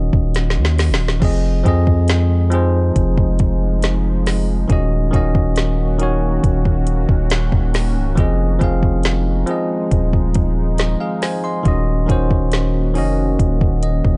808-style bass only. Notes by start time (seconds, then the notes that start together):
Already playing: D#1
0.13 D#1
0.57 D#2
0.90 D#1
1.22 F1
1.65 F2
2.96 F1
4.70 D#1
5.13 D#1
6.44 D#1
7.09 D#1
7.53 D#1
7.96 C#1
8.18 F1
8.61 F1
9.92 D#1
11.66 D#1
12.09 D#1
12.96 F1
13.39 D#1
14.05 D#1